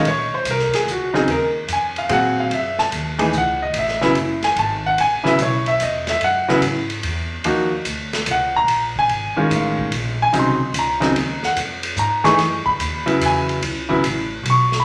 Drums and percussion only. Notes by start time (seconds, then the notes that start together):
0.05 ride
0.45 hi-hat pedal, ride
0.59 snare
0.73 snare, ride
0.88 hi-hat pedal
1.14 snare
1.28 ride
1.68 hi-hat pedal, ride
1.96 ride
2.09 ride
2.51 ride
2.79 snare
2.92 hi-hat pedal, ride
3.19 ride
3.33 hi-hat pedal
3.74 ride
3.88 snare
4.02 snare
4.15 hi-hat pedal, ride
4.43 snare, ride
4.56 ride
4.98 ride
5.26 snare
5.39 hi-hat pedal, ride
5.66 ride
5.80 hi-hat pedal, ride
6.07 snare, ride
6.21 ride
6.49 snare
6.62 hi-hat pedal, ride
6.90 ride
7.03 ride
7.44 ride
7.85 hi-hat pedal, ride
8.13 snare, ride
8.26 hi-hat pedal, ride
8.68 ride
8.96 kick
9.09 ride
9.51 hi-hat pedal, ride
9.79 kick
9.92 ride
10.34 hi-hat pedal, ride
10.74 hi-hat pedal, ride
11.02 snare, ride
11.16 ride
11.43 snare
11.57 hi-hat pedal, ride
11.83 ride
11.97 hi-hat pedal
12.25 snare, ride
12.39 snare, ride
12.66 kick
12.80 hi-hat pedal, ride
13.08 ride
13.21 hi-hat pedal, ride
13.49 ride
13.62 ride
13.90 kick
14.04 hi-hat pedal, ride
14.46 ride
14.72 snare